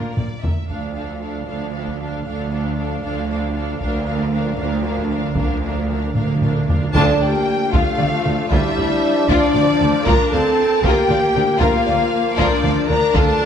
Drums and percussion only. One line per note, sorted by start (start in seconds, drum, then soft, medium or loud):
0.17 taiko low-mid medium
0.43 taiko low medium
0.70 taiko soft
1.87 taiko soft
3.81 taiko medium
4.97 taiko soft
5.36 taiko medium
6.16 taiko low-mid medium
6.42 taiko low-mid medium
6.69 taiko low medium
6.95 taiko medium
7.73 taiko medium
8.00 taiko mid medium
8.26 taiko mid medium
8.52 taiko medium
9.30 taiko medium
9.56 taiko mid medium
9.81 taiko mid medium
10.07 taiko medium
10.84 taiko medium
11.10 taiko mid medium
11.36 taiko mid soft
11.62 taiko loud
12.38 taiko medium
12.64 taiko mid medium
12.89 taiko mid soft
13.15 taiko medium